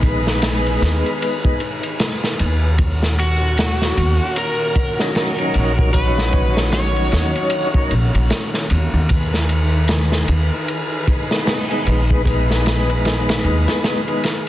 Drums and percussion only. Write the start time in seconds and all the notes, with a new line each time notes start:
0.03 kick, ride
0.27 snare
0.42 snare, ride
0.66 ride
0.82 snare, ride
1.06 ride
1.22 ride
1.45 kick
1.60 ride
1.83 ride
2.00 snare, ride
2.24 snare
2.39 ride
2.78 kick, ride
3.03 snare
3.19 ride
3.57 snare, ride
3.82 snare
3.97 ride
4.36 ride
4.76 kick, ride
5.00 snare
5.15 snare, open hi-hat
5.38 ride
5.54 ride
5.79 kick
5.94 kick, ride
6.18 snare
6.33 kick, ride
6.57 snare
6.73 snare, ride
6.96 ride
7.12 snare, ride
7.35 ride
7.50 ride
7.74 kick
7.91 ride
8.15 ride
8.30 snare, ride
8.54 snare
8.70 ride
9.09 kick, ride
9.34 snare
9.49 ride
9.88 snare, ride
10.12 snare
10.28 ride
10.68 ride
11.08 kick, ride
11.31 snare
11.47 snare, open hi-hat
11.71 ride
11.87 ride
12.10 kick
12.26 kick, ride
12.51 snare
12.66 snare, ride
12.90 ride
13.05 snare, ride
13.29 snare, ride
13.45 ride
13.68 snare, ride
13.84 snare, ride
14.08 ride
14.24 snare, ride